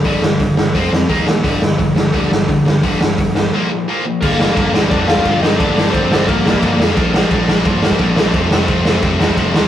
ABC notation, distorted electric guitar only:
X:1
M:4/4
L:1/8
Q:1/4=174
K:Gm
V:1 name="Distorted electric guitar" clef=bass
[G,,D,G,] [G,,D,] [G,,D,] [G,,D,] [F,CF] [F,C] [E,B,E] [E,B,] | [G,,D,G,] [G,,D,] [G,,D,] [G,,D,] [G,,D,G,] [G,,D,] [G,,D,] [G,,D,] | [G,,D,G,] [G,,D,] [G,,D,] [G,,D,] [B,,F,B,] [B,,F,] [B,,F,B,] [B,,F,] | [G,,D,G,B,D] [G,,D,G,B,D] [G,,D,G,B,D] [G,,D,G,B,D] [G,,D,G,B,D] [G,,D,G,B,D] [G,,D,G,B,D] [G,,D,G,B,D] |
[G,,D,G,B,D] [G,,D,G,B,D] [G,,D,G,B,D] [G,,D,G,B,D] [G,,D,G,B,D] [G,,D,G,B,D] [G,,D,G,B,D] [G,,D,G,B,D] | [B,,F,B,D] [B,,F,B,D] [B,,F,B,D] [B,,F,B,D] [B,,F,B,D] [B,,F,B,D] [B,,F,B,D] [B,,F,B,D] | [F,,C,F,A,C] [F,,C,F,A,C] [F,,C,F,A,C] [F,,C,F,A,C] [F,,C,F,A,C] [F,,C,F,A,C] [F,,C,F,A,C] [F,,C,F,A,C] |]